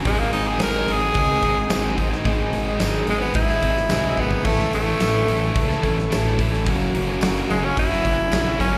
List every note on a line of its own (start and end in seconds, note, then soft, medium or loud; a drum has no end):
0.04 0.27 G#1 loud
0.04 0.58 G#2 medium
0.04 0.57 D#3 medium
0.04 2.23 G#3 medium
0.04 0.48 G#3 loud
0.04 0.20 G#3 loud
0.04 2.23 C4 medium
0.04 0.48 C4 loud
0.04 2.23 D#4 medium
0.04 0.46 D#4 loud
0.04 0.45 G#4 loud
0.04 2.23 C5 medium
0.04 kick loud
0.04 open hi-hat medium
0.19 0.32 A#3 loud
0.33 0.55 G#1 loud
0.33 0.60 G#3 soft
0.33 0.60 C4 medium
0.33 0.49 D#4 medium
0.33 0.60 D#4 medium
0.33 0.61 G#4 medium
0.33 open hi-hat medium
0.45 0.59 G#3 medium
0.45 0.60 C4 medium
0.45 0.60 D#4 medium
0.45 0.61 G#4 medium
0.45 0.60 G#4 medium
0.58 0.82 G#1 loud
0.58 1.67 G#2 medium
0.58 1.14 D#3 medium
0.58 0.87 G#3 medium
0.58 0.87 C4 loud
0.58 0.88 D#4 loud
0.58 0.89 G#4 loud
0.58 snare loud
0.58 open hi-hat medium
0.58 tambourine loud
0.63 0.94 A#4 loud
0.87 1.09 G#1 medium
0.87 1.00 G#3 medium
0.87 1.00 C4 medium
0.87 0.99 D#4 medium
0.87 1.00 G#4 medium
0.87 open hi-hat medium
0.92 1.14 G#3 soft
0.92 1.16 C4 medium
0.92 1.97 G#4 loud
1.01 1.30 G#3 medium
1.01 1.30 C4 medium
1.01 1.29 D#4 medium
1.01 1.28 G#4 medium
1.01 muted overdriven electric guitar stroke soft
1.14 1.37 C#2 loud
1.14 1.43 G#3 medium
1.14 1.44 C4 medium
1.14 1.44 D#4 medium
1.14 1.44 G#4 medium
1.14 kick loud
1.14 open hi-hat medium
1.27 1.40 G#3 medium
1.27 1.42 C4 medium
1.27 1.43 D#4 medium
1.27 1.44 G#4 medium
1.42 1.64 G#1 loud
1.42 1.55 G#3 medium
1.42 1.54 C4 medium
1.42 1.54 D#4 medium
1.42 1.54 G#4 medium
1.42 kick medium
1.42 open hi-hat medium
1.47 1.72 G#3 soft
1.47 1.73 C4 medium
1.55 muted overdriven electric guitar stroke medium
1.68 2.10 G#2 medium
1.68 2.11 D#3 medium
1.68 1.83 G#3 medium
1.68 1.83 C4 medium
1.68 1.81 D#4 loud
1.68 1.79 G#4 loud
1.68 snare loud
1.68 open hi-hat medium
1.68 tambourine loud
1.72 2.13 G#1 medium
1.72 1.99 G#2 medium
1.72 1.99 D#3 medium
1.72 1.99 G#3 loud
1.72 1.99 C4 medium
1.81 2.10 G#3 medium
1.81 2.10 C4 medium
1.81 2.09 D#4 medium
1.81 2.09 G#4 medium
1.97 2.09 G#3 medium
1.97 2.24 G#3 medium
1.97 2.09 C4 medium
1.97 2.24 C4 medium
1.97 2.09 D#4 medium
1.97 2.24 D#4 medium
1.97 2.25 G#4 medium
1.97 2.09 G#4 medium
1.97 kick medium
1.97 open hi-hat medium
2.10 2.24 G#3 medium
2.10 2.24 C4 medium
2.10 2.26 D#4 medium
2.10 2.26 G#4 medium
2.10 muted overdriven electric guitar stroke soft
2.10 snare soft
2.24 2.47 G#1 loud
2.24 2.79 G#2 loud
2.24 2.80 D#3 medium
2.24 2.67 G#3 loud
2.24 4.44 G#3 medium
2.24 2.67 C4 loud
2.24 4.44 C4 medium
2.24 2.65 D#4 loud
2.24 2.65 G#4 loud
2.24 4.44 C5 medium
2.24 4.44 D#5 medium
2.24 kick loud
2.24 open hi-hat medium
2.52 2.74 G#1 loud
2.52 2.80 G#3 medium
2.52 2.80 C4 medium
2.52 2.81 D#4 medium
2.52 2.80 G#4 medium
2.52 open hi-hat medium
2.66 2.80 G#3 medium
2.66 2.81 C4 medium
2.66 2.81 D#4 medium
2.66 2.81 G#4 medium
2.80 3.02 G#1 medium
2.80 3.35 G#2 medium
2.80 3.36 D#3 loud
2.80 3.07 G#3 loud
2.80 3.08 C4 medium
2.80 3.10 D#4 loud
2.80 3.10 G#4 medium
2.80 snare loud
2.80 open hi-hat medium
2.80 tambourine loud
3.07 3.29 G#1 medium
3.07 3.21 G#3 medium
3.07 3.21 G#3 loud
3.07 3.21 C4 medium
3.07 3.21 D#4 medium
3.07 3.20 G#4 medium
3.07 open hi-hat medium
3.20 3.48 G#3 medium
3.20 3.34 B3 medium
3.20 3.48 C4 medium
3.20 3.48 D#4 medium
3.20 3.47 G#4 medium
3.20 muted overdriven electric guitar stroke medium
3.34 3.56 G#1 medium
3.34 3.63 G#3 medium
3.34 3.64 C4 medium
3.34 3.64 D#4 medium
3.34 4.21 E4 loud
3.34 3.63 G#4 medium
3.34 kick loud
3.34 open hi-hat medium
3.48 3.61 G#3 medium
3.48 3.61 C4 medium
3.48 3.62 D#4 medium
3.48 3.64 G#4 medium
3.48 snare soft
3.62 3.84 G#1 medium
3.62 3.76 G#3 medium
3.62 3.76 C4 medium
3.62 3.76 D#4 medium
3.62 3.75 G#4 medium
3.62 kick medium
3.62 open hi-hat medium
3.66 3.91 G#3 soft
3.77 muted overdriven electric guitar stroke soft
3.77 snare soft
3.89 4.11 C2 medium
3.89 4.31 G#2 loud
3.89 4.31 D#3 medium
3.89 4.05 G#3 loud
3.89 4.04 C4 medium
3.89 4.03 D#4 loud
3.89 4.02 G#4 loud
3.89 snare loud
3.89 open hi-hat medium
3.89 tambourine loud
4.03 4.31 G#3 medium
4.03 4.31 C4 medium
4.03 4.30 D#4 medium
4.03 4.29 G#4 medium
4.17 4.39 G#1 medium
4.17 4.31 G#3 medium
4.17 4.47 B3 medium
4.17 4.31 C4 medium
4.17 4.31 D#4 medium
4.17 4.46 D#4 medium
4.17 4.30 G#4 medium
4.17 4.46 G#4 medium
4.17 kick medium
4.21 4.47 G#3 medium
4.21 4.47 C4 medium
4.30 4.44 G#3 medium
4.30 4.44 C4 medium
4.30 4.43 D#4 medium
4.30 4.43 G#4 medium
4.30 muted overdriven electric guitar stroke medium
4.30 floor tom medium
4.44 4.67 A1 medium
4.44 4.98 A2 loud
4.44 4.98 E3 medium
4.44 4.87 A3 loud
4.44 4.72 A3 loud
4.44 6.64 A3 medium
4.44 6.63 C#4 medium
4.44 4.87 C#4 loud
4.44 6.63 E4 medium
4.44 4.85 E4 loud
4.44 4.84 A4 medium
4.44 6.64 C#5 medium
4.44 kick loud
4.44 crash loud
4.73 4.94 A1 medium
4.73 5.81 A3 loud
4.73 5.02 A3 soft
4.73 5.02 C#4 medium
4.73 5.01 E4 soft
4.73 5.01 A4 soft
4.73 open hi-hat medium
4.86 4.99 A3 medium
4.86 5.01 C#4 medium
4.86 5.00 E4 medium
4.86 5.01 A4 medium
4.99 5.22 A1 medium
4.99 5.55 A2 medium
4.99 5.55 E3 loud
4.99 5.27 A3 medium
4.99 5.28 C#4 medium
4.99 5.28 E4 loud
4.99 5.30 A4 loud
4.99 snare loud
4.99 open hi-hat medium
4.99 tambourine loud
5.28 5.49 A1 medium
5.28 5.42 A3 medium
5.28 5.41 C#4 medium
5.28 5.41 E4 medium
5.28 5.40 A4 medium
5.28 open hi-hat medium
5.41 5.69 A3 medium
5.41 5.69 C#4 medium
5.41 5.68 E4 medium
5.41 5.68 A4 medium
5.41 muted overdriven electric guitar stroke medium
5.56 5.77 C#2 medium
5.56 5.84 A3 medium
5.56 5.84 C#4 medium
5.56 5.83 E4 medium
5.56 5.82 A4 medium
5.56 kick loud
5.56 open hi-hat medium
5.68 5.81 A3 medium
5.68 5.83 C#4 medium
5.68 5.83 E4 medium
5.68 5.84 A4 medium
5.68 snare soft
5.82 6.05 A1 medium
5.82 5.97 A3 medium
5.82 5.97 C#4 medium
5.82 5.97 E4 medium
5.82 5.97 A4 medium
5.82 kick medium
5.82 open hi-hat medium
5.87 6.12 A3 medium
5.98 muted overdriven electric guitar stroke soft
5.98 snare soft
6.09 6.67 A1 medium
6.09 6.51 A2 medium
6.09 6.52 E3 loud
6.09 6.27 A3 medium
6.09 6.26 C#4 medium
6.09 6.26 E4 loud
6.09 6.24 A4 loud
6.09 snare loud
6.09 open hi-hat medium
6.09 tambourine loud
6.13 6.39 A2 medium
6.26 6.54 A3 medium
6.26 6.53 C#4 medium
6.26 6.52 E4 medium
6.26 6.51 A4 medium
6.38 6.51 A3 medium
6.38 6.65 A3 medium
6.38 6.51 C#4 medium
6.38 6.66 C#4 medium
6.38 6.51 E4 medium
6.38 6.67 E4 medium
6.38 6.66 A4 medium
6.38 6.50 A4 medium
6.38 kick medium
6.38 open hi-hat medium
6.51 6.66 A3 medium
6.51 6.65 C#4 medium
6.51 6.65 E4 medium
6.51 6.64 A4 medium
6.51 muted overdriven electric guitar stroke medium
6.51 snare soft
6.65 6.88 F#1 loud
6.65 7.19 F#2 loud
6.65 7.20 C#3 medium
6.65 7.10 F#3 loud
6.65 7.09 A#3 loud
6.65 8.78 A#3 medium
6.65 7.08 C#4 medium
6.65 8.78 C#4 medium
6.65 8.78 F#4 medium
6.65 7.06 F#4 loud
6.65 6.93 A#4 loud
6.65 8.78 C#5 medium
6.65 kick loud
6.65 open hi-hat medium
6.94 7.15 F#1 loud
6.94 7.21 C#4 medium
6.94 7.22 F#4 medium
6.94 7.21 A#4 medium
6.94 open hi-hat medium
7.07 7.20 F#3 medium
7.07 7.22 A#3 medium
7.07 7.21 C#4 medium
7.07 7.23 F#4 medium
7.20 7.43 F#1 medium
7.20 7.75 F#2 medium
7.20 7.76 C#3 loud
7.20 7.48 F#3 loud
7.20 7.49 A#3 loud
7.20 7.50 C#4 loud
7.20 7.47 A#4 loud
7.20 snare loud
7.20 open hi-hat medium
7.20 tambourine loud
7.24 7.51 F#4 loud
7.49 7.70 F#1 medium
7.49 7.64 F#3 medium
7.49 7.66 G#3 loud
7.49 7.64 A#3 medium
7.49 7.63 C#4 medium
7.49 7.62 F#4 medium
7.49 7.76 A#4 medium
7.49 open hi-hat medium
7.61 7.90 F#3 medium
7.61 7.90 A#3 medium
7.61 7.89 C#4 medium
7.61 7.76 C#4 loud
7.61 7.88 F#4 medium
7.61 muted overdriven electric guitar stroke medium
7.76 7.98 F#1 medium
7.76 8.03 F#3 medium
7.76 8.04 C#4 medium
7.76 8.57 E4 loud
7.76 8.03 F#4 medium
7.76 8.03 A#4 medium
7.76 kick loud
7.76 open hi-hat medium
7.90 8.03 F#3 medium
7.90 8.04 A#3 medium
7.90 8.05 C#4 medium
7.90 8.06 F#4 medium
7.90 snare soft
8.04 8.26 F#1 medium
8.04 8.19 F#3 medium
8.04 8.19 A#3 medium
8.04 8.19 C#4 medium
8.04 8.18 F#4 medium
8.04 8.31 A#4 medium
8.04 kick medium
8.04 open hi-hat medium
8.19 muted overdriven electric guitar stroke medium
8.31 8.52 A#1 medium
8.31 8.72 F#2 medium
8.31 8.72 C#3 medium
8.31 8.46 F#3 medium
8.31 8.46 A#3 loud
8.31 8.44 C#4 loud
8.31 8.43 F#4 loud
8.31 8.59 A#4 medium
8.31 snare loud
8.31 open hi-hat medium
8.31 tambourine loud
8.44 8.74 F#3 medium
8.44 8.73 A#3 medium
8.44 8.72 C#4 medium
8.44 8.71 F#4 medium
8.58 8.78 G1 medium
8.58 8.72 F#3 medium
8.58 8.72 A#3 medium
8.58 8.72 C#4 medium
8.58 8.78 C#4 loud
8.58 8.72 F#4 medium
8.58 8.78 F#4 medium
8.58 8.78 A#4 medium
8.58 kick medium
8.58 open hi-hat medium
8.62 8.78 C#4 medium
8.72 8.78 A#3 medium
8.72 8.78 C#4 medium
8.72 8.78 F#4 medium
8.72 muted overdriven electric guitar stroke medium